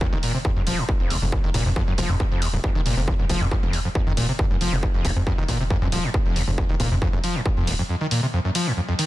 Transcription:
0.01 0.07 D#2 loud
0.01 kick loud
0.12 0.19 F1 medium
0.12 0.18 D#3 loud
0.23 0.32 A#2 loud
0.23 open hi-hat loud
0.34 0.38 C3 medium
0.45 0.51 F2 loud
0.45 kick loud
0.56 0.63 F2 medium
0.56 0.62 F#2 medium
0.67 0.74 D#1 medium
0.67 0.80 F3 loud
0.67 open hi-hat loud
0.78 0.84 G#2 medium
0.89 0.92 F2 medium
0.89 kick loud
1.00 1.06 F1 medium
1.00 1.12 F2 medium
1.10 1.17 F1 medium
1.10 1.17 D#2 loud
1.10 open hi-hat loud
1.22 1.35 F1 medium
1.22 1.25 F2 loud
1.32 1.39 D#2 loud
1.32 kick loud
1.44 1.50 F1 medium
1.44 1.50 D#3 loud
1.54 1.61 F1 loud
1.54 1.64 A#2 medium
1.54 kick medium
1.54 open hi-hat loud
1.66 1.72 F2 medium
1.66 1.69 C3 loud
1.76 1.83 F2 loud
1.76 kick loud
1.88 1.93 F#2 medium
1.98 2.05 F1 medium
1.98 2.11 F3 medium
1.98 kick medium
1.98 open hi-hat loud
2.09 2.16 F2 medium
2.09 2.15 G#2 medium
2.20 2.24 F2 medium
2.20 kick loud
2.32 2.44 F2 medium
2.42 2.48 D#2 loud
2.42 open hi-hat loud
2.53 2.60 D#1 loud
2.53 2.57 F2 loud
2.64 2.70 F2 medium
2.64 kick loud
2.75 2.81 F1 loud
2.75 2.81 D#3 medium
2.85 2.93 F1 medium
2.85 2.95 A#2 loud
2.85 open hi-hat loud
2.97 3.10 F1 medium
2.97 3.01 C3 loud
3.08 3.14 F2 loud
3.08 kick loud
3.19 3.25 F1 medium
3.19 3.25 F#2 medium
3.29 3.36 F1 loud
3.29 3.43 F3 loud
3.29 kick medium
3.29 open hi-hat loud
3.41 3.47 F2 medium
3.41 3.47 G#2 medium
3.51 3.55 F2 medium
3.51 kick loud
3.63 3.69 F1 medium
3.63 3.75 F2 medium
3.73 3.80 D#2 loud
3.73 open hi-hat loud
3.85 3.88 F2 medium
3.95 4.02 F2 medium
3.95 kick loud
4.07 4.13 F2 loud
4.07 4.13 D#3 loud
4.17 4.24 D#1 medium
4.17 4.27 A#2 loud
4.17 open hi-hat loud
4.29 4.32 C3 loud
4.39 4.45 F2 loud
4.39 kick loud
4.51 4.57 F1 loud
4.51 4.56 F#2 medium
4.61 4.68 F1 medium
4.61 4.74 F3 loud
4.61 open hi-hat loud
4.72 4.85 F1 medium
4.72 4.78 G#2 medium
4.83 4.87 F2 medium
4.83 kick loud
4.94 5.01 F1 medium
4.94 5.06 F2 medium
5.05 5.12 F1 loud
5.05 5.11 D#2 loud
5.05 kick medium
5.05 open hi-hat medium
5.16 5.22 F2 medium
5.16 5.20 F2 loud
5.27 5.33 F2 medium
5.27 kick loud
5.38 5.44 F1 medium
5.38 5.44 D#3 medium
5.48 5.58 A#2 medium
5.48 kick medium
5.48 open hi-hat loud
5.60 5.63 C3 medium
5.70 5.77 F2 loud
5.70 kick loud
5.82 5.88 F2 loud
5.82 5.88 F#2 medium
5.92 5.99 D#1 medium
5.92 6.05 F3 loud
5.92 open hi-hat loud
6.04 6.10 G#2 medium
6.14 6.18 F2 medium
6.14 kick loud
6.26 6.32 F1 loud
6.26 6.38 F2 medium
6.36 6.43 F1 medium
6.36 6.42 D#2 loud
6.36 open hi-hat medium
6.48 6.60 F1 medium
6.48 6.51 F2 loud
6.58 6.64 F2 medium
6.58 kick loud
6.69 6.76 F1 medium
6.69 6.75 D#3 loud
6.80 6.87 F1 loud
6.80 6.89 A#2 loud
6.80 kick medium
6.80 open hi-hat loud
6.91 6.98 F2 medium
6.91 6.95 C3 loud
7.02 7.08 F2 loud
7.02 kick loud
7.13 7.20 F1 medium
7.13 7.19 F#2 medium
7.24 7.37 F3 loud
7.24 open hi-hat loud
7.35 7.41 G#2 medium
7.46 7.49 F2 medium
7.46 kick loud
7.57 7.63 F2 loud
7.57 7.69 F2 medium
7.67 7.74 D#1 medium
7.67 7.74 D#2 loud
7.67 open hi-hat loud
7.79 7.82 F2 loud
7.89 7.96 F2 medium
8.01 8.07 D#3 loud
8.11 8.21 A#2 loud
8.11 open hi-hat loud
8.23 8.26 C3 loud
8.33 8.40 F2 loud
8.45 8.50 F#2 medium
8.55 8.68 F3 loud
8.55 open hi-hat loud
8.67 8.72 G#2 medium
8.77 8.81 F2 medium
8.89 8.94 F2 medium
8.99 9.05 D#3 medium
8.99 open hi-hat loud

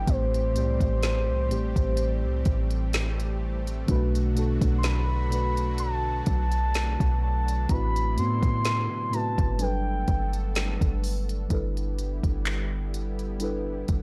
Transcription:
0.00 3.84 E3 medium
0.00 3.84 G4 medium
0.00 0.10 G5 loud
0.00 downlifter medium
0.05 0.57 A1 loud
0.05 0.49 A2 medium
0.05 3.85 G3 medium
0.05 0.49 A3 medium
0.05 7.65 A3 medium
0.05 3.85 C4 medium
0.05 0.50 C4 medium
0.05 0.50 G4 medium
0.05 3.41 C5 loud
0.05 kick loud
0.05 closed hi-hat medium
0.10 0.51 C5 medium
0.34 closed hi-hat medium
0.53 0.79 C2 loud
0.53 1.38 A2 medium
0.53 1.39 A3 medium
0.53 1.40 C4 medium
0.53 1.40 G4 medium
0.53 closed hi-hat medium
0.58 1.41 D5 medium
0.80 1.30 A1 loud
0.80 kick loud
0.80 closed hi-hat medium
1.03 snare loud
1.03 closed hi-hat medium
1.28 1.52 C2 loud
1.48 1.75 A1 loud
1.48 3.18 A2 medium
1.48 3.18 A3 medium
1.48 3.19 C4 medium
1.48 3.20 G4 medium
1.48 closed hi-hat medium
1.53 3.20 C5 loud
1.76 2.25 A1 loud
1.76 kick loud
1.76 closed hi-hat soft
1.97 closed hi-hat medium
2.24 2.44 C2 loud
2.45 3.85 A1 loud
2.45 kick loud
2.45 closed hi-hat medium
2.71 closed hi-hat medium
2.93 snare loud
2.93 closed hi-hat medium
3.20 closed hi-hat soft
3.67 closed hi-hat medium
3.86 4.59 B1 loud
3.86 4.29 B2 medium
3.86 7.65 D3 medium
3.86 9.56 F#3 medium
3.86 4.30 A3 medium
3.86 11.46 D4 medium
3.86 4.31 D4 medium
3.86 7.65 F#4 medium
3.86 4.31 F#4 medium
3.86 kick loud
3.86 closed hi-hat medium
3.91 4.32 B4 loud
4.15 closed hi-hat medium
4.34 5.19 B2 medium
4.34 5.20 A3 medium
4.34 5.20 D4 medium
4.34 5.21 F#4 medium
4.34 closed hi-hat medium
4.39 5.22 A4 loud
4.61 6.22 B1 loud
4.61 kick loud
4.61 closed hi-hat medium
4.78 4.86 C6 medium
4.83 5.81 B5 loud
4.83 snare loud
4.83 closed hi-hat medium
5.29 6.99 B2 medium
5.29 6.99 A3 medium
5.29 7.00 D4 medium
5.29 7.01 F#4 medium
5.29 closed hi-hat medium
5.34 7.01 B4 medium
5.57 closed hi-hat medium
5.78 6.27 A5 loud
5.78 closed hi-hat medium
6.26 6.97 B1 loud
6.26 7.18 A5 loud
6.26 kick medium
6.26 closed hi-hat medium
6.52 closed hi-hat medium
6.74 snare loud
6.74 closed hi-hat medium
7.00 7.67 B1 loud
7.00 kick medium
7.00 closed hi-hat soft
7.23 7.71 A5 loud
7.48 closed hi-hat medium
7.68 8.18 A1 loud
7.68 8.11 A2 medium
7.68 9.58 C3 medium
7.68 11.47 D3 medium
7.68 8.11 A3 medium
7.68 8.12 C4 medium
7.68 9.58 E4 medium
7.68 8.12 E4 medium
7.68 8.19 B5 loud
7.68 kick loud
7.68 closed hi-hat medium
7.72 8.13 F#4 medium
7.72 8.13 B4 medium
7.96 closed hi-hat medium
8.15 9.00 A2 medium
8.15 8.41 A2 loud
8.15 9.01 A3 medium
8.15 9.01 C4 medium
8.15 9.02 E4 medium
8.15 9.15 C6 loud
8.15 closed hi-hat medium
8.19 9.03 B3 medium
8.19 9.02 F#4 medium
8.43 8.88 A2 loud
8.43 kick loud
8.43 closed hi-hat medium
8.65 snare loud
8.65 closed hi-hat medium
9.10 9.59 A2 medium
9.10 9.59 A3 medium
9.10 9.60 C4 medium
9.10 9.60 E4 medium
9.10 9.61 F#4 medium
9.10 9.60 A5 loud
9.10 closed hi-hat medium
9.15 9.61 B4 medium
9.38 10.05 G1 loud
9.38 kick loud
9.38 closed hi-hat soft
9.58 11.29 F#3 medium
9.58 11.28 G3 medium
9.58 11.49 A3 medium
9.58 11.48 B3 medium
9.58 11.28 D4 medium
9.58 11.48 A4 medium
9.58 11.29 A4 medium
9.58 10.99 G5 loud
9.58 closed hi-hat medium
9.63 11.30 B4 medium
10.08 10.78 G1 loud
10.08 kick medium
10.08 closed hi-hat medium
10.33 closed hi-hat soft
10.55 snare loud
10.55 closed hi-hat medium
10.81 11.48 G1 loud
10.81 kick medium
10.81 closed hi-hat soft
11.04 open hi-hat medium
11.29 closed hi-hat medium
11.48 12.21 G1 loud
11.48 14.02 D3 medium
11.48 13.18 G3 medium
11.48 14.02 G3 medium
11.48 14.02 B3 medium
11.48 13.19 D4 medium
11.48 13.19 E4 medium
11.48 14.02 E4 medium
11.48 14.02 G4 medium
11.48 13.20 A4 medium
11.48 kick loud
11.48 closed hi-hat medium
11.53 13.20 B4 loud
11.77 closed hi-hat soft
11.99 closed hi-hat medium
12.23 13.84 G1 loud
12.23 kick medium
12.23 closed hi-hat medium
12.45 clap loud
12.45 closed hi-hat medium
12.94 closed hi-hat medium
13.19 closed hi-hat soft
13.39 14.02 G3 medium
13.39 14.02 D4 medium
13.39 14.02 E4 medium
13.39 14.02 A4 medium
13.39 closed hi-hat medium
13.44 14.02 B4 medium
13.88 14.02 G1 loud
13.88 kick medium
13.88 closed hi-hat medium

